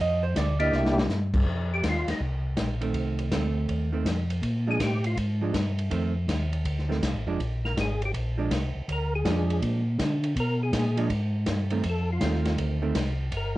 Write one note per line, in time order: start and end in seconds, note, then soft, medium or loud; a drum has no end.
0.00 0.34 F2 medium
0.00 0.23 D#5 medium
0.23 0.35 C5 medium
0.35 0.71 D2 loud
0.35 0.60 D5 medium
0.35 kick soft
0.35 snare medium
0.35 hi-hat pedal medium
0.35 ride medium
0.59 1.07 A#3 medium
0.59 1.07 D4 medium
0.59 1.07 E4 medium
0.59 1.07 G4 medium
0.59 0.73 D#5 medium
0.59 ride soft
0.72 1.08 C2 loud
0.72 1.38 E5 medium
0.72 snare soft
0.85 snare medium
0.98 snare medium
1.09 1.45 G2 medium
1.09 snare soft
1.09 hi-hat pedal medium
1.34 kick medium
1.34 crash medium
1.46 1.82 F2 medium
1.46 kick soft
1.74 1.85 G4 medium
1.83 2.06 D#2 medium
1.83 kick soft
1.83 snare medium
1.83 hi-hat pedal soft
1.83 ride medium
1.89 2.10 F4 medium
2.07 2.13 D#2 soft
2.07 2.21 D#4 medium
2.07 snare soft
2.07 ride medium
2.20 2.56 C2 medium
2.20 kick soft
2.57 2.93 A#1 medium
2.57 kick soft
2.57 snare medium
2.57 hi-hat pedal soft
2.57 ride medium
2.81 3.29 D#3 medium
2.81 3.29 A3 medium
2.81 3.30 C4 medium
2.81 ride soft
2.94 3.30 C2 medium
2.94 kick soft
2.94 ride soft
3.19 ride soft
3.31 3.67 D2 medium
3.31 3.89 A3 medium
3.31 3.89 C4 medium
3.31 kick soft
3.31 snare medium
3.31 hi-hat pedal soft
3.31 ride medium
3.68 4.04 D#2 medium
3.68 kick soft
3.68 ride soft
3.92 4.04 D#3 medium
3.92 4.05 A3 medium
3.92 4.05 C4 medium
4.05 4.41 F2 medium
4.05 kick soft
4.05 snare medium
4.05 hi-hat pedal soft
4.05 ride medium
4.30 ride soft
4.42 4.78 A#2 medium
4.42 kick soft
4.42 ride soft
4.67 4.79 F3 medium
4.67 4.79 G#3 medium
4.67 4.79 D4 medium
4.67 4.81 G#4 medium
4.80 5.16 A2 medium
4.80 5.05 G4 medium
4.80 kick soft
4.80 snare medium
4.80 hi-hat pedal soft
4.80 ride medium
5.04 5.18 F4 medium
5.04 ride soft
5.16 5.53 G#2 medium
5.16 kick soft
5.16 ride medium
5.41 5.53 F3 medium
5.41 5.53 G#3 medium
5.41 5.53 D4 medium
5.54 5.90 G2 medium
5.54 kick soft
5.54 snare medium
5.54 hi-hat pedal medium
5.54 ride medium
5.79 ride soft
5.91 6.27 F2 medium
5.91 6.13 D#3 medium
5.91 6.13 A3 medium
5.91 6.13 C4 medium
5.91 kick soft
5.91 ride medium
6.28 6.64 D#2 medium
6.28 kick soft
6.28 snare medium
6.28 hi-hat pedal medium
6.28 ride medium
6.53 ride soft
6.65 7.01 D2 medium
6.65 kick soft
6.65 ride medium
6.79 snare soft
6.89 7.01 D#3 soft
6.89 7.01 A3 medium
6.89 7.01 C4 medium
6.89 snare soft
7.02 7.14 C2 medium
7.02 kick soft
7.02 snare medium
7.02 hi-hat pedal medium
7.02 ride medium
7.14 7.27 A1 medium
7.27 7.38 F1 medium
7.27 7.38 F3 medium
7.27 7.39 G#3 medium
7.27 7.39 D4 medium
7.39 7.75 A#1 medium
7.39 kick soft
7.39 ride soft
7.65 7.77 A#4 medium
7.65 snare soft
7.77 8.13 G#1 medium
7.77 kick soft
7.77 snare medium
7.77 hi-hat pedal medium
7.77 ride medium
7.81 8.02 G#4 medium
8.02 8.12 G4 medium
8.02 ride soft
8.14 8.50 A#1 medium
8.14 kick soft
8.14 ride medium
8.38 8.49 F3 medium
8.38 8.50 G#3 medium
8.38 8.50 D4 medium
8.51 8.73 C2 medium
8.51 kick soft
8.51 snare medium
8.51 hi-hat pedal medium
8.51 ride medium
8.75 8.82 C2 soft
8.88 9.24 D2 medium
8.88 kick soft
8.88 ride medium
8.92 9.14 A#4 medium
9.15 9.60 G#4 medium
9.25 9.61 F2 medium
9.25 9.81 F3 soft
9.25 9.82 G#3 medium
9.25 9.82 D4 medium
9.25 kick soft
9.25 snare medium
9.25 hi-hat pedal medium
9.25 ride medium
9.50 ride soft
9.62 9.98 A#2 medium
9.62 kick soft
9.62 ride medium
9.99 10.35 D3 medium
9.99 kick soft
9.99 snare medium
9.99 hi-hat pedal medium
9.99 ride medium
10.24 ride soft
10.36 10.72 B2 medium
10.36 kick soft
10.36 ride medium
10.40 10.62 A#4 medium
10.63 11.08 G#4 medium
10.72 11.09 A#2 medium
10.72 kick soft
10.72 snare medium
10.72 hi-hat pedal soft
10.72 ride medium
10.97 11.09 F3 medium
10.97 11.09 G#3 medium
10.97 11.09 D4 medium
10.97 ride soft
11.09 11.46 G#2 medium
11.09 kick soft
11.09 ride medium
11.46 11.83 G2 medium
11.46 kick soft
11.46 snare medium
11.46 hi-hat pedal medium
11.46 ride medium
11.70 11.83 D#3 medium
11.70 11.83 A3 medium
11.70 11.83 C4 medium
11.70 ride soft
11.83 12.20 F2 medium
11.83 kick soft
11.83 ride medium
11.89 12.10 A4 medium
12.12 12.57 F4 medium
12.20 12.57 D#2 medium
12.20 12.78 D#3 medium
12.20 12.78 A3 medium
12.20 12.79 C4 medium
12.20 kick soft
12.20 snare medium
12.20 hi-hat pedal medium
12.20 ride medium
12.33 snare soft
12.45 snare soft
12.45 ride soft
12.57 12.94 D2 medium
12.57 kick soft
12.57 ride medium
12.82 12.94 D#3 medium
12.82 12.94 A3 medium
12.82 12.94 C4 medium
12.95 13.31 C2 medium
12.95 kick soft
12.95 snare medium
12.95 hi-hat pedal medium
12.95 ride medium
13.32 13.58 G1 medium
13.32 kick soft
13.32 ride medium
13.37 13.58 A#4 medium